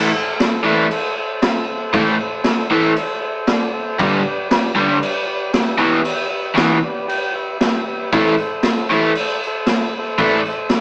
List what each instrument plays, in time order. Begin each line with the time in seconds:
Already playing: transistor combo organ A4
0.13 transistor combo organ A4 C5 E5
0.36 transistor combo organ A4 C5 E5
0.40 snare, crash
0.62 overdriven electric guitar A2 E3, transistor combo organ A4 C5 D5
0.66 overdriven electric guitar A3
0.90 transistor combo organ A4 C5 E5, crash
1.19 transistor combo organ A4 C5 E5
1.42 transistor combo organ A4 C5 E5, snare, crash
1.68 transistor combo organ A4 C5 E5
1.93 overdriven electric guitar A2 E3 A3, transistor combo organ A4 C5 G5, kick, crash
2.21 transistor combo organ A4 C5 E5
2.44 transistor combo organ A4 C5 E5, snare, crash
2.71 overdriven electric guitar A2 E3 A3, transistor combo organ A4 C5 E5
2.96 transistor combo organ A4 C5 E5, crash
3.22 transistor combo organ A4 C5 E5
3.47 transistor combo organ A4 C5 D5, snare, crash
3.73 transistor combo organ A4 C5 E5
3.98 overdriven electric guitar G2 D3 G3, transistor combo organ G4 B4 D5, kick, crash
4.23 transistor combo organ G4 B4 D5
4.49 transistor combo organ G4 B4 D5, snare, crash
4.75 overdriven electric guitar G2 D3 G3, transistor combo organ G4 B4 D5
5.00 transistor combo organ G4 B4 D5, crash
5.27 transistor combo organ G4 B4 D5
5.54 transistor combo organ G4 B4 E5, snare, crash
5.78 overdriven electric guitar E2 B2 E3, transistor combo organ G4 B4 E5
6.05 crash
6.30 transistor combo organ G4 B4 E5
6.55 overdriven electric guitar E2 B2 E3, transistor combo organ G4 B4 E5, snare, crash
6.83 transistor combo organ G4 B4 D5
7.08 transistor combo organ G4 B4 G5, crash
7.33 transistor combo organ G4 B4 E5
7.60 transistor combo organ G4 B4 E5, snare, crash
7.87 transistor combo organ G4 B4 E5
8.11 overdriven electric guitar A2 E3 A3, transistor combo organ A4 C5 E5, kick, tambourine, crash
8.38 transistor combo organ A4 C5 E5, tambourine
8.52 tambourine
8.63 transistor combo organ A4 C5 E5, snare, tambourine, crash
8.90 overdriven electric guitar A2 E3 A3, transistor combo organ A4 C5, tambourine
8.94 transistor combo organ E5
9.15 tambourine, crash
9.20 transistor combo organ A4 C5 E5
9.43 transistor combo organ A4 E5, tambourine
9.47 transistor combo organ C5
9.66 snare, tambourine, crash
9.73 transistor combo organ A4 C5 E5
9.98 transistor combo organ A4 C5 E5
10.06 tambourine
10.18 overdriven electric guitar A2 E3 A3, transistor combo organ A4 C5 D5, kick, tambourine, crash
10.34 tambourine
10.45 transistor combo organ C5 E5, tambourine
10.49 transistor combo organ A4
10.69 snare, tambourine, crash
10.74 transistor combo organ A4 C5 E5